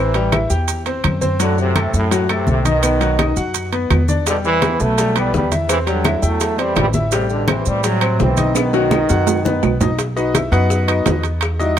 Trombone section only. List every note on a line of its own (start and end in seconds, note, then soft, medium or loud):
0.00 0.47 C3 medium
0.00 0.47 E3 medium
1.41 1.57 A2 medium
1.41 1.57 D3 medium
1.59 1.92 A2 medium
1.59 1.91 C3 medium
1.95 2.27 F#2 medium
1.95 2.28 A2 medium
2.31 2.48 A2 medium
2.31 2.48 C3 medium
2.49 2.65 A2 medium
2.49 2.65 C3 loud
2.67 3.34 B2 medium
2.67 3.34 D#3 medium
4.27 4.36 B2 medium
4.27 4.35 D3 loud
4.44 4.78 C3 medium
4.44 4.78 E3 loud
4.80 5.16 F#3 medium
4.80 5.16 A3 loud
5.16 5.33 E3 medium
5.16 5.32 G3 medium
5.33 5.51 E3 medium
5.33 5.50 G3 medium
5.69 5.78 C3 medium
5.69 5.77 E3 loud
5.87 6.21 D3 medium
5.87 6.20 F#3 loud
6.22 6.60 F#3 medium
6.22 6.58 A3 loud
6.59 6.78 E3 medium
6.59 6.76 G3 medium
6.77 6.87 E3 medium
6.77 6.85 G3 loud
7.12 7.30 A2 medium
7.12 7.29 C3 loud
7.30 7.48 B2 medium
7.30 7.47 D3 medium
7.48 7.67 C3 medium
7.48 7.66 E3 medium
7.66 7.85 E3 medium
7.66 7.84 G3 loud
7.84 8.19 C3 medium
7.84 8.17 F#3 loud
8.20 8.53 E3 medium
8.20 8.54 C4 medium
8.56 9.78 B2 medium
8.56 9.77 D#3 loud